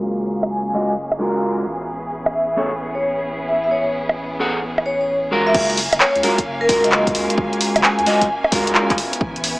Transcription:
Already playing: F#1 G#3 A#3 C#4 F4 F#4 G#4 A#4 F5
0.43 high bongo
0.51 G#5
0.73 G#3 F4 F#4 D#5
1.12 high bongo
1.19 G#3 F4 F#4 A#4
1.65 A1 B3 E4
2.26 high bongo
2.34 E5
2.57 B3 G#4 A4 C#5
2.95 C#5
3.49 E5
3.64 E5
3.71 C#5
4.09 high bongo
4.40 B3 G#4 A4 F#5
4.78 high bongo
4.86 C#5
5.01 C#5
5.31 G#3 F4 F#4 A#4
5.47 E5
5.54 F#1 A#3 C#4 F5 G#5, kick, crash
5.70 closed hi-hat
5.77 open hi-hat
5.92 F#1, closed hi-hat, high bongo
6.00 C#5, cross-stick, clap
6.15 C#2, closed hi-hat
6.23 G#3 F4 F#4 A#4, open hi-hat
6.38 kick, closed hi-hat
6.46 F#1
6.61 A#4
6.69 C#2 G#3 F4 F#4 A#4, kick, open hi-hat
6.84 F#1 D#5, closed hi-hat
6.92 clap
7.07 kick, closed hi-hat
7.15 C#2, open hi-hat
7.30 closed hi-hat
7.38 kick
7.53 closed hi-hat
7.61 open hi-hat
7.76 F#1, closed hi-hat, high bongo
7.83 G#5, cross-stick, clap
7.99 C#2, closed hi-hat
8.06 G#3 F4 F#4 D#5, open hi-hat
8.21 kick, closed hi-hat
8.44 high bongo
8.52 C#2 G#3 F4 F#4 A#4, kick, open hi-hat
8.67 C#2, closed hi-hat
8.75 clap
8.90 kick, clap, closed hi-hat
8.98 B3 E4, open hi-hat
9.13 closed hi-hat
9.21 A1, kick
9.36 closed hi-hat
9.44 open hi-hat

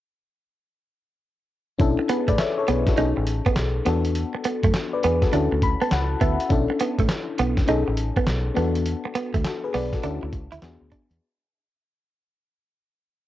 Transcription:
1.79 B1 C#4 D4 E4 A4, kick, closed hi-hat
1.99 muted clean electric guitar stroke
2.09 B3 G#4 B4, closed hi-hat
2.28 A1 A3 B4 D5, kick, closed hi-hat
2.38 C#5 E5, snare, clap, closed hi-hat
2.58 A4 C#5
2.68 B1 B3 G#4 B4, closed hi-hat
2.87 F#4 A4, kick, snare, closed hi-hat
2.97 B1 C#4 D#4 G#4 A4, closed hi-hat
3.17 A1, muted clean electric guitar stroke
3.27 closed hi-hat
3.46 B3, kick, closed hi-hat
3.56 B1, snare, clap, closed hi-hat
3.85 E2 B3 D4 F#4 A4, closed hi-hat
4.05 closed hi-hat
4.15 closed hi-hat
4.34 muted clean electric guitar stroke
4.44 B3, closed hi-hat
4.63 F#2 A3, kick, closed hi-hat
4.74 snare, clap, closed hi-hat
4.93 B4 D5
5.03 E2 B3 G#4 B4, closed hi-hat
5.22 F#4 A4, kick, snare, closed hi-hat
5.32 D2 C#4 D4 E4 F#4 A4, closed hi-hat
5.52 D2, muted clean electric guitar stroke
5.62 B5, kick, closed hi-hat
5.82 B3 A5, closed hi-hat
5.91 C#2 F#5, snare, clap, closed hi-hat
6.21 D2 B3 E5, kick, closed hi-hat
6.40 closed hi-hat
6.49 B1 C#4 D4 E4 A4, kick, closed hi-hat
6.70 muted clean electric guitar stroke
6.80 B3, closed hi-hat
6.99 A1 A3, kick, closed hi-hat
7.09 snare, clap, closed hi-hat
7.38 B1 B3, closed hi-hat
7.57 kick, snare, closed hi-hat
7.67 B1 C#4 D#4 G#4 A4, closed hi-hat
7.88 A1, muted clean electric guitar stroke
7.97 closed hi-hat
8.17 B3, kick, closed hi-hat
8.27 B1, snare, clap, closed hi-hat
8.55 E2 B3 D4 F#4 A4, closed hi-hat
8.75 closed hi-hat
8.86 closed hi-hat
9.05 muted clean electric guitar stroke
9.15 B3, closed hi-hat
9.34 D2 A3, kick, closed hi-hat
9.44 F#4 A4, snare, clap, closed hi-hat
9.64 G#4 B4
9.74 B1 B3 B4 D5, open hi-hat
9.93 F#4 A4, kick, snare, closed hi-hat
10.03 D2 C#4 D4 E4 F#4 A4, closed hi-hat
10.23 D2, muted clean electric guitar stroke
10.33 C#2, kick, closed hi-hat
10.52 D2 E4, closed hi-hat
10.62 E2 B3 D4 F#4 G#4, snare, clap, closed hi-hat
10.81 D2
10.92 D4, kick, closed hi-hat
11.11 E2, closed hi-hat

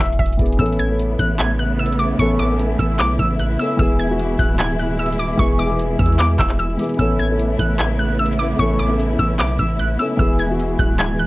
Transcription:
Already playing: E3 B3 G#4
0.00 E1 E5
0.06 closed hi-hat
0.12 closed hi-hat
0.19 E1 E5, kick, closed hi-hat
0.26 closed hi-hat
0.32 closed hi-hat
0.37 E1 E3 B3, kick, closed hi-hat
0.42 G#4
0.46 closed hi-hat
0.52 closed hi-hat
0.57 A1 C#3 A3 B3 C#4 E4 E6, kick, closed hi-hat
0.61 A4
0.66 closed hi-hat
0.72 closed hi-hat
0.79 G#6, closed hi-hat
0.87 B3 C#4
0.91 A4
0.99 closed hi-hat
1.19 A1 F#6, kick, closed hi-hat
1.39 G#6, clap, closed hi-hat
1.59 F#6
1.79 E6, closed hi-hat
1.86 closed hi-hat
1.92 closed hi-hat
1.99 D6, closed hi-hat
2.17 A1 B3 C#4 C#6, kick, closed hi-hat
2.21 A4
2.39 D6, closed hi-hat
2.47 B3 C#4
2.51 A4
2.59 closed hi-hat
2.79 A1 E6, kick, closed hi-hat
2.99 B1 D6, clap, closed hi-hat
3.19 A1 E6, kick, closed hi-hat
3.39 F#6, closed hi-hat
3.57 B3 C#4 E6, open hi-hat
3.62 A4
3.77 E1 B2 E3 G#3 B3 E6, kick, closed hi-hat
3.81 G#4
3.99 G#6, closed hi-hat
4.07 E3 B3
4.11 F#4
4.19 closed hi-hat
4.39 D1 F#6, kick, closed hi-hat
4.59 G#6, clap, closed hi-hat
4.79 F#6
4.99 E6, closed hi-hat
5.06 closed hi-hat
5.13 closed hi-hat
5.19 D6, closed hi-hat
5.37 E1 E3 B3 C#6, kick, closed hi-hat
5.42 G#4
5.59 D6, closed hi-hat
5.67 E3 B3
5.71 G#4
5.79 closed hi-hat
5.99 E2 E6, kick, closed hi-hat
6.06 closed hi-hat
6.12 closed hi-hat
6.19 D6, clap, closed hi-hat
6.39 E1 E6, kick, clap, closed hi-hat
6.49 clap
6.59 E6, closed hi-hat
6.77 E3 B3, closed hi-hat, open hi-hat
6.82 G#4, closed hi-hat
6.89 closed hi-hat
6.94 B3, closed hi-hat
6.99 A1 C#3 A3 B3 C#4 E4 A4 E6, kick, closed hi-hat
7.19 G#6, closed hi-hat
7.27 B3 C#4
7.31 A4
7.39 closed hi-hat
7.59 A1 F#6, kick, closed hi-hat
7.79 G#6, clap, closed hi-hat
7.99 F#6
8.19 E6, closed hi-hat
8.26 closed hi-hat
8.33 closed hi-hat
8.39 D6, closed hi-hat
8.57 A1 B3 C#4 C#6, kick, closed hi-hat
8.61 A4
8.79 D6, closed hi-hat
8.87 B3 C#4
8.91 A4
8.99 closed hi-hat
9.19 A1 E6, kick, closed hi-hat
9.39 B1 D6, clap, closed hi-hat
9.59 A1 E6, kick, closed hi-hat
9.79 F#6, closed hi-hat
9.97 B3 C#4 E6, open hi-hat
10.02 A4
10.17 E1 B2 E3 G#3 B3 E6, kick, closed hi-hat
10.21 G#4
10.39 G#6, closed hi-hat
10.47 E3 B3
10.51 F#4
10.59 closed hi-hat
10.79 D1 F#6, kick, closed hi-hat
10.99 G#6, clap, closed hi-hat
11.19 F#6

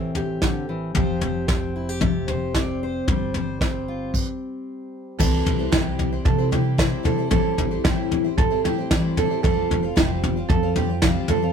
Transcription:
Already playing: A1 A2 E3 A3 C4 G4 C5
0.15 G4, floor tom
0.42 D3, kick, snare
0.69 E3
0.95 F1 F3 C4 G4 C5, kick, floor tom
1.21 C5, floor tom
1.48 C4, kick, snare
1.76 E4
1.89 G4
2.01 C3, kick, floor tom
2.28 C5, floor tom
2.54 C4 D5, kick, snare
2.83 C5
3.08 G1 G3 C5, kick, floor tom
3.34 C5, floor tom
3.61 C4, kick, snare
3.88 F4
4.14 kick, crash
5.19 C2 C3 E3 G3 C4 E4 A4 C5, kick, floor tom, crash
5.46 C2, floor tom
5.59 G3 C4 E4 C5
5.72 C2 C3 E3 G3 C4 E4 G4 C5, kick, snare, floor tom
5.99 floor tom
6.12 G3 C4 E4 C5
6.25 C3 A4, kick, floor tom
6.38 G3 C4 E4 C5
6.51 G3 C4 E4 G4 C5, floor tom
6.78 C3 E3 G3 C4 E4 C5, kick, snare, floor tom
7.03 C3 G3 C4 E4 A4 C5, floor tom
7.18 G3 C4 E4 C5
7.30 A1 A2 E3 G3 C4 E4 A4 C5, kick, floor tom
7.58 A1, floor tom
7.71 G3 C4 E4 C5
7.84 A1 A2 E3 G3 C4 E4 G4 C5, kick, snare, floor tom
8.11 floor tom
8.24 G3 C4 E4 C5
8.37 A2 A4, kick, floor tom
8.50 G3 C4 E4 C5
8.64 G3 C4 E4 G4 C5, floor tom
8.78 G3 C4 E4 C5
8.91 A2 E3 G3 C4 E4 C5, kick, snare, floor tom
9.17 A2 G3 C4 E4 A4 C5, floor tom
9.30 G3 C4 E4 C5
9.43 F1 F3 G3 C4 F4 A4 C5, kick, floor tom
9.71 F1, floor tom
9.83 C4 F4 C5
9.96 F1 F3 G3 C4 F4 G4 C5, kick, snare, floor tom
10.23 floor tom
10.36 C4 F4 C5
10.49 F2 A4, kick, floor tom
10.63 C4 F4 C5
10.76 G3 C4 F4 G4 C5, floor tom
10.89 C4 F4 C5
11.02 F3 G3 C4 F4 C5, kick, snare, floor tom
11.28 F2 G3 C4 F4 A4 C5, floor tom
11.42 C4 F4 C5

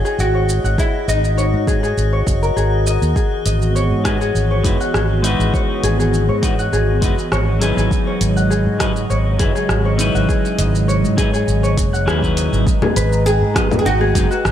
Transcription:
Already playing: F#4 G#4 C#5 D#5 F#5
0.05 G#4, shaker
0.18 G#1 F#4, shaker
0.34 C#5
0.49 shaker
0.64 G#1 F#5, shaker
0.78 E4 G#4, kick, shaker
1.08 G#1 D#4 D#5, shaker
1.24 shaker
1.38 C#5, shaker
1.53 G#2
1.67 G#4, kick, shaker
1.83 G#4, shaker
1.97 G#1, shaker
2.13 C#5
2.27 F#1, kick, shaker
2.42 A#4, shaker
2.56 G#1 G#4, shaker
2.86 D#5, shaker
3.02 D#2, shaker
3.16 E3 B3 F#4 G#4, kick, shaker
3.46 G#1 D#5, closed hi-hat, shaker
3.62 shaker
3.75 C#5, shaker
3.91 G#2
4.04 G#3 D#4 E4 F#4 G#4 B4, kick, cross-stick, closed hi-hat, shaker
4.21 G#4, shaker
4.35 G#1, shaker
4.51 C#5
4.64 F#1 G#3 D#4 E4 F#4 B4, kick, closed hi-hat, shaker
4.80 F#5, shaker
4.94 G#1 G#4, cross-stick, shaker
5.22 G#3 D#4 E4 F#4 D#5, closed hi-hat, shaker
5.26 B4
5.39 G#1, shaker
5.54 C#5, kick, shaker
5.83 G#1 G#4, closed hi-hat, shaker
5.99 G#4, shaker
6.14 shaker
6.28 G#2 C#5
6.42 G#3 D#4 E4 F#4 B4, kick, closed hi-hat, shaker
6.59 F#5, shaker
6.72 G#1 G#4, shaker
7.01 F#1 G#3 D#4 E4 F#4 B4 D#5, kick, closed hi-hat, shaker
7.19 shaker
7.32 G#1 C#5, cross-stick, shaker
7.59 F#3 C#4 D#4 E4 G#4, closed hi-hat, shaker
7.63 B4
7.77 G#1 G#4, shaker
7.91 C#3 F#3 G#3 D#5, kick, shaker
8.07 C#5
8.21 G#1, closed hi-hat, shaker
8.36 F#5, shaker
8.50 G#4, shaker
8.66 G#2
8.79 F#3 C#4 D#4 E4 B4 D#5, kick, cross-stick, closed hi-hat, shaker
8.96 shaker
9.10 G#1 C#5, shaker
9.38 F#1 F#3 C#4 D#4 E4 G#4 B4, kick, closed hi-hat, shaker
9.55 G#4, shaker
9.69 G#1, cross-stick, shaker
9.85 C#5
9.97 F#3 C#4 D#4 E4, closed hi-hat, shaker
10.01 B4
10.15 G#1 F#5, shaker
10.29 G#4, kick, shaker
10.45 shaker
10.58 G#1 D#5, closed hi-hat, shaker
10.75 shaker
10.88 C#5, shaker
11.04 G#2, shaker
11.17 F#3 C#4 D#4 E4 G#4 B4, kick, closed hi-hat, shaker
11.33 G#4, shaker
11.48 G#1, shaker
11.63 C#5, shaker
11.77 F#1, kick, closed hi-hat, shaker
11.93 F#5, shaker
12.06 D#2 F#3 C#4 D#4 E4 G#4 B4, cross-stick, shaker
12.21 F#3 C#4 D#4 E4 B4, kick, shaker
12.37 D#5, closed hi-hat, shaker
12.52 G#1, shaker
12.66 G#3 B4 D#5 A#5, kick, shaker
12.82 G#4, low conga
12.96 G#1 B4, closed hi-hat, shaker
13.13 shaker
13.26 G#4, shaker
13.42 G#2
13.54 F#3 G#3 B3 D#4 G#4 D#5, kick, cross-stick, closed hi-hat, shaker
13.71 low conga, shaker
13.79 G#4
13.85 G#1 D#4 F#4, shaker
14.01 G#4
14.15 F#1 F#3 G#3 B3 D#4 G#4, kick, closed hi-hat, shaker
14.31 F#4, shaker
14.45 G#1, cross-stick, shaker

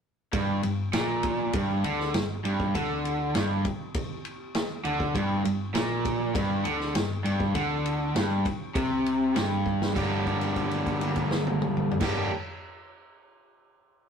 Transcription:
0.33 G1 G2, kick, ride
0.63 G1 G2, ride
0.93 A#1 A#2, snare, ride
1.23 kick, ride
1.53 G1 G2, kick, ride
1.83 D2 D3, ride
2.00 snare
2.14 G1 G2, snare, ride
2.44 G1 G2, ride
2.60 kick
2.75 D2 D3, kick, ride
3.05 ride
3.34 G1 G2, snare, ride
3.65 kick, ride
3.94 kick, ride
4.25 ride
4.55 snare, ride
4.84 D2 D3, ride
5.00 kick
5.15 G1 G2, kick, ride
5.45 G1 G2, ride
5.74 A#1 A#2, snare, ride
6.05 kick, ride
6.34 G1 G2, kick, ride
6.64 D2 D3, ride
6.80 snare
6.94 G1 G2, snare, ride
7.24 G1 G2, ride
7.40 kick
7.55 D2 D3, kick, ride
7.86 ride
8.15 G1 G2, snare, ride
8.45 kick, ride
8.75 C2 C3, kick, ride
9.06 ride
9.35 G1 G2, snare, ride
9.66 kick
9.82 snare
9.94 G1 G2 D3 G3 A#3 D4 G4, kick, crash
10.26 kick, crash
10.41 crash
10.56 kick, crash
10.71 crash
10.86 kick, crash
11.01 crash
11.16 kick, crash
11.31 snare
11.47 high tom
11.62 mid tom
11.77 mid tom
11.91 floor tom
12.00 G1 G2 D3 G3 A#3 D4, kick, snare, crash
12.04 G4

